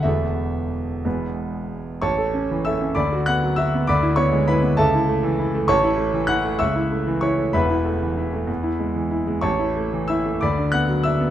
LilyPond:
<<
  \new Staff \with { instrumentName = "Grand piano" } { \time 6/8 \key a \major \tempo 4. = 64 e''2~ e''8 r8 | <cis'' a'' cis'''>4 <e'' e'''>8 <d'' b'' d'''>8 <fis'' fis'''>8 <e'' e'''>8 | <d'' b'' d'''>8 <cis'' cis'''>8 <b' b''>8 <a' e'' a''>4. | <cis'' a'' cis'''>4 <fis'' fis'''>8 <e'' cis''' e'''>4 <cis'' cis'''>8 |
<b' e'' b''>2~ <b' e'' b''>8 r8 | <cis'' a'' cis'''>4 <e'' e'''>8 <d'' b'' d'''>8 <fis'' fis'''>8 <e'' e'''>8 | }
  \new Staff \with { instrumentName = "Grand piano" } { \time 6/8 \key a \major <e,, e, a b a'>4. <e,, e, gis b b'>4. | a,,16 a'16 cis'16 e16 a'16 cis'16 d,16 fis'16 b16 fis16 fis'16 b16 | d,16 e'16 b16 gis16 e'16 b16 cis,16 e'16 a16 e16 e'16 a16 | a,,16 e'16 a16 e16 e'16 a16 cis,16 e'16 a16 e16 e'16 a16 |
<e,, e,>16 e'16 a16 e16 e'16 a16 e,16 e'16 gis16 e16 e'16 gis16 | a,,16 e'16 a16 e16 e'16 a16 d,16 d'16 b16 fis16 d'16 b16 | }
>>